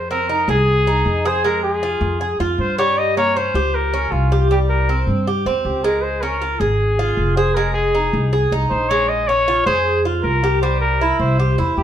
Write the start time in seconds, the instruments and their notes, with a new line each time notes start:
Already playing: upright bass F2, trumpet C5
0.11 cuban tres C4, trumpet A#4
0.29 cuban tres D#4
0.48 upright bass C2, cuban tres G#4, trumpet G#4
0.87 cuban tres D#4
1.05 upright bass F2
1.25 cuban tres G#4, trumpet C5
1.45 cuban tres G#3, trumpet A#4
1.63 trumpet G#4
1.83 cuban tres F4
2.01 upright bass F2
2.21 cuban tres G#4
2.40 upright bass F2, cuban tres F4
2.58 upright bass G2, trumpet C5
2.79 cuban tres G3, trumpet C#5
2.98 trumpet D#5
3.17 cuban tres A#3, trumpet C#5
3.37 cuban tres C#4, trumpet C5
3.54 upright bass C#2, cuban tres G4
3.75 trumpet A#4
3.94 cuban tres C#4
4.12 upright bass C2, trumpet F4
4.32 cuban tres G4
4.51 cuban tres G3, trumpet G4
4.69 trumpet A#4
4.89 cuban tres C4
5.07 upright bass G2
5.27 cuban tres G4
5.45 upright bass E2, cuban tres C4
5.65 upright bass C#2, trumpet G4
5.84 cuban tres G#3, trumpet A#4
6.03 trumpet C5
6.22 cuban tres C#4, trumpet A#4
6.42 cuban tres F4
6.60 upright bass G#1, trumpet G#4, cuban tres G#4
6.99 cuban tres F4
7.17 upright bass F1
7.37 cuban tres G#4, trumpet C5
7.55 cuban tres G#3, trumpet A#4
7.74 trumpet G#4
7.95 cuban tres D#4
8.13 upright bass C2
8.33 cuban tres G#4
8.52 upright bass C2, cuban tres D#4
8.70 upright bass A#1, trumpet C5
8.89 cuban tres G#3, trumpet C#5
9.09 trumpet D#5
9.28 cuban tres C#4, trumpet C#5
9.48 cuban tres F4
9.66 upright bass F2, cuban tres G#4, trumpet C5
10.05 cuban tres F4
10.23 upright bass C2, trumpet A#4
10.44 cuban tres G4
10.62 cuban tres G3, trumpet C5
10.81 trumpet A#4
11.01 cuban tres E4
11.19 upright bass C2, trumpet C5
11.39 cuban tres G4
11.58 upright bass E2, cuban tres E4
11.77 upright bass F2, trumpet G4